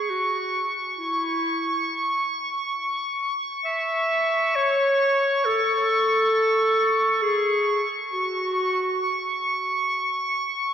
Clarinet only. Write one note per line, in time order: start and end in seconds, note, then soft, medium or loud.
0.00 0.12 G#4 medium
0.10 0.70 F#4 medium
0.98 2.27 E4 medium
3.65 4.57 E5 medium
4.55 5.47 C#5 medium
5.45 7.24 A4 medium
7.22 7.85 G#4 medium
8.12 9.42 F#4 medium